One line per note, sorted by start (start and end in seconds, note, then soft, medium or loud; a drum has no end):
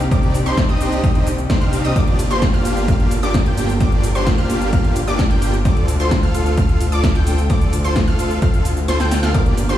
0.00 1.92 C3 medium
0.00 1.92 D#3 medium
0.00 5.61 A#3 medium
0.00 1.92 C4 medium
0.00 1.92 G4 medium
0.00 shaker soft
0.11 0.44 C2 loud
0.11 0.35 C4 medium
0.11 0.35 D4 medium
0.11 0.35 D#4 medium
0.11 0.35 G4 medium
0.11 0.35 D5 loud
0.11 0.35 D6 loud
0.11 kick loud
0.11 closed hi-hat medium
0.11 shaker soft
0.23 closed hi-hat soft
0.35 open hi-hat loud
0.35 shaker medium
0.46 0.67 C2 loud
0.46 0.66 C4 medium
0.46 0.66 D4 medium
0.46 0.66 D#4 medium
0.46 0.66 G4 medium
0.46 0.66 C5 loud
0.46 0.66 C6 loud
0.46 closed hi-hat soft
0.46 shaker soft
0.57 kick loud
0.57 snare loud
0.57 closed hi-hat medium
0.57 shaker soft
0.69 1.01 C2 loud
0.69 1.01 C4 medium
0.69 1.01 D4 medium
0.69 1.01 D#4 medium
0.69 1.01 G4 medium
0.69 1.01 D#5 loud
0.69 1.01 D#6 loud
0.69 closed hi-hat soft
0.81 open hi-hat loud
0.81 shaker medium
0.92 closed hi-hat soft
0.92 shaker soft
1.04 1.48 C2 loud
1.04 1.27 C4 medium
1.04 1.27 D4 medium
1.04 1.27 D#4 medium
1.04 1.27 G4 medium
1.04 1.27 D#5 medium
1.04 1.27 D#6 medium
1.04 kick loud
1.04 closed hi-hat medium
1.04 shaker soft
1.15 closed hi-hat soft
1.27 open hi-hat loud
1.27 shaker medium
1.38 closed hi-hat soft
1.38 shaker soft
1.50 1.59 C2 loud
1.50 1.60 C4 medium
1.50 1.60 D4 medium
1.50 1.60 D#4 medium
1.50 1.60 G4 medium
1.50 1.60 C5 loud
1.50 1.60 C6 medium
1.50 kick loud
1.50 snare loud
1.50 closed hi-hat medium
1.50 shaker soft
1.61 1.82 C2 loud
1.61 1.82 C4 medium
1.61 1.82 D4 medium
1.61 1.82 D#4 medium
1.61 1.82 G4 medium
1.61 1.82 F5 medium
1.61 1.82 F6 medium
1.61 closed hi-hat soft
1.73 open hi-hat loud
1.73 shaker medium
1.84 1.94 C2 loud
1.84 1.93 C4 loud
1.84 1.93 D4 medium
1.84 1.93 D#4 medium
1.84 1.93 G4 medium
1.84 1.93 D#5 loud
1.84 1.93 D#6 loud
1.84 closed hi-hat soft
1.84 shaker soft
1.96 2.28 G1 loud
1.96 5.62 G3 medium
1.96 2.20 A#3 medium
1.96 2.20 D4 medium
1.96 9.78 F4 medium
1.96 5.62 A4 medium
1.96 5.62 A#4 medium
1.96 2.20 D5 loud
1.96 2.20 D6 loud
1.96 kick loud
1.96 closed hi-hat medium
1.96 ride medium
1.96 shaker soft
2.07 closed hi-hat soft
2.19 open hi-hat loud
2.19 ride medium
2.19 shaker medium
2.31 2.51 G1 loud
2.31 2.50 A#3 medium
2.31 2.50 D4 medium
2.31 2.50 F4 medium
2.31 2.50 G4 medium
2.31 2.50 C5 medium
2.31 2.50 C6 loud
2.31 closed hi-hat soft
2.31 shaker soft
2.42 kick loud
2.42 snare loud
2.42 closed hi-hat medium
2.42 ride medium
2.42 shaker soft
2.54 2.86 G1 loud
2.54 2.85 A#3 medium
2.54 2.86 D4 medium
2.54 2.85 F4 medium
2.54 2.85 G4 medium
2.54 2.86 F5 loud
2.54 2.86 F6 loud
2.54 closed hi-hat soft
2.65 open hi-hat loud
2.65 ride medium
2.65 shaker medium
2.77 closed hi-hat soft
2.77 shaker soft
2.88 3.21 G1 loud
2.88 3.12 A#3 medium
2.88 3.12 D4 medium
2.88 3.12 F4 medium
2.88 3.12 G4 medium
2.88 3.12 F5 medium
2.88 3.12 F6 medium
2.88 kick loud
2.88 closed hi-hat medium
2.88 ride medium
2.88 shaker soft
3.00 closed hi-hat soft
3.11 open hi-hat loud
3.11 ride medium
3.11 shaker medium
3.23 3.44 G1 loud
3.23 3.38 A#3 medium
3.23 3.38 D4 medium
3.23 3.38 F4 medium
3.23 3.38 G4 medium
3.23 3.38 D5 loud
3.23 3.38 D6 medium
3.23 closed hi-hat soft
3.23 shaker soft
3.34 kick loud
3.34 snare loud
3.34 closed hi-hat medium
3.34 ride medium
3.34 shaker soft
3.46 3.78 G1 loud
3.46 3.70 A#3 medium
3.46 3.70 D4 medium
3.46 3.70 F4 medium
3.46 3.70 G4 medium
3.46 3.70 G5 medium
3.46 3.70 G6 medium
3.46 closed hi-hat soft
3.58 open hi-hat loud
3.58 ride medium
3.58 shaker medium
3.69 open hi-hat medium
3.69 shaker soft
3.81 4.13 G1 loud
3.81 4.04 A#3 medium
3.81 4.04 D4 medium
3.81 4.04 F4 medium
3.81 4.04 G4 medium
3.81 4.04 D5 loud
3.81 4.04 D6 loud
3.81 kick loud
3.81 closed hi-hat medium
3.81 ride medium
3.81 shaker soft
3.92 closed hi-hat soft
4.04 open hi-hat loud
4.04 ride medium
4.04 shaker medium
4.15 4.36 G1 loud
4.15 4.35 A#3 medium
4.15 4.35 D4 medium
4.15 4.35 F4 medium
4.15 4.35 G4 medium
4.15 4.35 C5 loud
4.15 4.35 C6 loud
4.15 closed hi-hat soft
4.15 shaker soft
4.27 kick loud
4.27 snare loud
4.27 closed hi-hat medium
4.27 ride medium
4.27 shaker soft
4.38 4.71 G1 loud
4.38 4.70 A#3 medium
4.38 4.70 D4 medium
4.38 4.70 F4 medium
4.38 4.70 G4 medium
4.38 4.70 F5 loud
4.38 4.70 F6 loud
4.38 closed hi-hat soft
4.50 open hi-hat loud
4.50 ride medium
4.50 shaker medium
4.61 closed hi-hat soft
4.61 shaker soft
4.73 5.05 G1 loud
4.73 4.97 A#3 medium
4.73 4.97 D4 medium
4.73 4.97 F4 medium
4.73 4.97 G4 medium
4.73 4.97 F5 loud
4.73 4.96 F6 medium
4.73 kick loud
4.73 closed hi-hat medium
4.73 ride medium
4.73 shaker soft
4.84 closed hi-hat soft
4.96 open hi-hat loud
4.96 ride medium
4.96 shaker medium
5.07 5.28 G1 loud
5.07 5.22 A#3 medium
5.07 5.22 D4 medium
5.07 5.22 F4 medium
5.07 5.22 G4 medium
5.07 5.22 D5 medium
5.07 5.22 D6 loud
5.07 closed hi-hat soft
5.07 shaker soft
5.19 kick loud
5.19 snare loud
5.19 closed hi-hat loud
5.19 ride medium
5.19 shaker soft
5.30 5.63 G1 loud
5.30 5.54 A#3 medium
5.30 5.54 D4 medium
5.30 5.54 F4 medium
5.30 5.54 G4 medium
5.30 5.54 G5 medium
5.30 5.54 G6 medium
5.30 closed hi-hat soft
5.42 open hi-hat loud
5.42 ride medium
5.42 shaker medium
5.54 closed hi-hat soft
5.54 shaker soft
5.65 5.98 D2 loud
5.65 9.31 A3 medium
5.65 9.31 D4 medium
5.65 5.89 F4 medium
5.65 5.89 A4 medium
5.65 5.89 D5 medium
5.65 5.89 D6 loud
5.65 kick loud
5.65 closed hi-hat loud
5.65 ride medium
5.65 shaker soft
5.77 closed hi-hat soft
5.88 open hi-hat loud
5.88 ride medium
5.88 shaker medium
6.00 6.21 D2 loud
6.00 6.19 F4 medium
6.00 6.19 A4 medium
6.00 6.19 C5 medium
6.00 6.19 C6 loud
6.00 closed hi-hat soft
6.00 shaker soft
6.11 kick loud
6.11 snare loud
6.11 closed hi-hat loud
6.11 ride medium
6.11 shaker soft
6.23 6.55 D2 loud
6.23 6.55 F4 medium
6.23 6.55 A4 medium
6.23 6.55 F5 loud
6.23 6.55 F6 loud
6.23 closed hi-hat soft
6.34 open hi-hat loud
6.34 ride medium
6.34 shaker medium
6.46 closed hi-hat soft
6.46 shaker soft
6.57 6.90 D2 loud
6.57 6.81 F4 medium
6.57 6.81 A4 medium
6.57 6.81 F5 loud
6.57 6.81 F6 medium
6.57 kick loud
6.57 closed hi-hat loud
6.57 ride medium
6.57 shaker soft
6.69 closed hi-hat soft
6.81 open hi-hat loud
6.81 ride medium
6.81 shaker medium
6.92 7.13 D2 loud
6.92 7.07 F4 medium
6.92 7.07 A4 medium
6.92 7.07 D5 medium
6.92 7.07 D6 loud
6.92 closed hi-hat soft
6.92 shaker soft
7.04 kick loud
7.04 snare loud
7.04 closed hi-hat loud
7.04 ride medium
7.04 shaker soft
7.15 7.48 D2 loud
7.15 7.39 F4 medium
7.15 7.39 A4 medium
7.15 7.39 G5 medium
7.15 7.39 G6 medium
7.15 closed hi-hat soft
7.27 open hi-hat loud
7.27 ride medium
7.27 shaker medium
7.38 open hi-hat medium
7.38 shaker soft
7.50 7.82 D2 loud
7.50 7.73 F4 medium
7.50 7.73 A4 medium
7.50 7.73 D5 loud
7.50 7.73 D6 loud
7.50 kick loud
7.50 closed hi-hat loud
7.50 ride medium
7.50 shaker soft
7.61 closed hi-hat soft
7.61 shaker soft
7.73 open hi-hat loud
7.73 ride medium
7.73 shaker medium
7.84 8.05 D2 loud
7.84 8.04 F4 medium
7.84 8.04 A4 medium
7.84 8.04 C5 loud
7.84 8.04 C6 loud
7.84 closed hi-hat soft
7.84 shaker soft
7.96 kick loud
7.96 snare loud
7.96 closed hi-hat loud
7.96 ride medium
7.96 shaker soft
8.07 8.40 D2 loud
8.07 8.39 F4 medium
8.07 8.39 A4 medium
8.07 8.39 F5 loud
8.07 8.39 F6 loud
8.07 closed hi-hat soft
8.19 open hi-hat loud
8.19 ride medium
8.19 shaker medium
8.31 closed hi-hat soft
8.31 shaker soft
8.42 8.86 D2 loud
8.42 8.66 F4 medium
8.42 8.66 A4 medium
8.42 8.66 F5 loud
8.42 8.66 F6 medium
8.42 kick loud
8.42 closed hi-hat medium
8.42 ride medium
8.42 shaker soft
8.54 closed hi-hat soft
8.54 shaker soft
8.65 open hi-hat loud
8.65 ride medium
8.65 shaker medium
8.77 closed hi-hat soft
8.77 shaker soft
8.88 8.98 D2 loud
8.88 8.98 F4 medium
8.88 8.98 A4 medium
8.88 8.98 C5 loud
8.88 8.98 C6 loud
8.88 snare medium
8.88 closed hi-hat loud
8.88 ride medium
8.88 shaker soft
9.00 9.21 D2 loud
9.00 9.20 F4 medium
9.00 9.20 A4 medium
9.00 9.20 G5 medium
9.00 9.20 G6 medium
9.00 snare medium
9.00 closed hi-hat soft
9.00 shaker soft
9.11 snare medium
9.11 open hi-hat loud
9.11 ride medium
9.11 shaker medium
9.23 9.32 D2 loud
9.23 9.32 F4 loud
9.23 9.32 A4 medium
9.23 9.32 F5 loud
9.23 9.32 F6 loud
9.23 snare medium
9.23 closed hi-hat soft
9.23 shaker soft
9.33 9.67 G1 loud
9.33 9.78 G3 medium
9.33 9.58 A#3 medium
9.33 9.78 A#3 medium
9.33 9.58 D4 medium
9.33 9.58 F4 medium
9.33 9.58 G4 medium
9.33 9.78 A#4 loud
9.33 9.78 A#4 medium
9.33 9.58 D5 loud
9.33 9.78 A5 medium
9.33 9.58 D6 loud
9.33 kick loud
9.33 closed hi-hat loud
9.33 ride medium
9.33 shaker soft
9.46 closed hi-hat soft
9.58 open hi-hat loud
9.58 ride medium
9.58 shaker medium
9.69 9.78 G1 loud
9.69 9.78 A#3 medium
9.69 9.78 D4 medium
9.69 9.78 F4 medium
9.69 9.78 G4 medium
9.69 9.78 C5 medium
9.69 9.78 C6 loud
9.69 closed hi-hat soft
9.69 shaker soft